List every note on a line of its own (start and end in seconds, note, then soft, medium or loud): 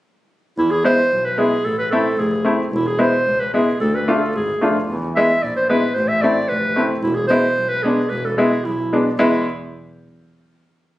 0.58 0.74 E2 medium
0.58 0.72 E4 medium
0.71 0.84 G#4 medium
0.84 0.98 G#3 medium
0.84 0.98 B3 medium
0.84 0.98 E4 medium
0.84 1.26 C5 loud
1.11 1.28 B1 medium
1.25 1.40 B4 medium
1.38 1.52 G#3 soft
1.38 1.52 B3 medium
1.38 1.52 E4 medium
1.38 1.66 G#4 medium
1.65 1.81 A1 medium
1.65 1.78 A4 medium
1.79 1.90 B4 medium
1.91 2.06 A3 medium
1.91 2.06 C4 soft
1.91 2.06 E4 medium
1.91 2.21 A4 medium
2.19 2.35 F1 medium
2.19 2.60 G#4 medium
2.45 2.59 A3 medium
2.45 2.59 C4 soft
2.45 2.59 E4 soft
2.73 2.89 E1 medium
2.73 2.88 E4 medium
2.87 3.01 G#4 medium
2.99 3.13 G#3 medium
2.99 3.13 B3 medium
2.99 3.13 E4 medium
2.99 3.41 C5 medium
3.27 3.43 C#2 medium
3.40 3.53 B4 medium
3.54 3.67 G#3 medium
3.54 3.68 B3 soft
3.54 3.68 E4 medium
3.54 3.79 G#4 medium
3.80 3.97 D2 medium
3.80 3.96 A4 medium
3.95 4.11 B4 medium
4.08 4.21 A3 medium
4.08 4.21 D4 soft
4.08 4.22 F4 medium
4.08 4.16 A4 medium
4.15 4.23 G#4 medium
4.22 4.35 A4 medium
4.34 4.59 G#1 medium
4.34 4.73 G#4 medium
4.61 4.86 F1 medium
4.61 4.75 A3 soft
4.61 4.75 D4 soft
4.61 4.75 F4 soft
4.89 5.05 E2 medium
5.15 5.30 G#3 medium
5.15 5.30 B3 soft
5.15 5.30 E4 medium
5.15 5.44 E5 medium
5.43 5.59 A#1 medium
5.43 5.56 D5 medium
5.56 5.69 C5 medium
5.69 5.83 G#3 soft
5.69 5.83 B3 soft
5.69 5.83 E4 medium
5.69 5.96 B4 medium
5.95 6.13 A1 medium
5.95 6.10 C5 medium
6.08 6.23 E5 medium
6.21 6.37 A3 soft
6.21 6.37 C4 medium
6.21 6.37 E4 medium
6.21 6.50 D5 medium
6.49 6.67 F1 medium
6.49 6.90 B4 medium
6.76 6.90 A3 soft
6.76 6.90 C4 soft
6.76 6.90 E4 soft
7.01 7.20 E1 medium
7.01 7.16 E4 medium
7.15 7.27 G#4 medium
7.28 7.44 G#3 medium
7.28 7.44 B3 medium
7.28 7.44 E4 medium
7.28 7.71 C5 medium
7.58 7.74 B1 medium
7.69 7.84 B4 medium
7.83 7.98 G#3 soft
7.83 7.98 B3 medium
7.83 7.98 D4 medium
7.83 8.11 G#4 medium
8.09 8.28 E1 medium
8.09 8.26 B4 medium
8.25 8.39 A4 medium
8.38 8.51 G#3 medium
8.38 8.52 B3 medium
8.38 8.52 E4 medium
8.38 8.67 G#4 medium
8.65 8.81 B1 medium
8.65 9.05 E4 medium
8.93 9.06 G#3 soft
8.93 9.06 B3 soft
8.93 9.06 D4 medium
9.19 9.44 E2 medium
9.19 9.44 G#3 medium
9.19 9.44 B3 medium
9.19 9.44 E4 medium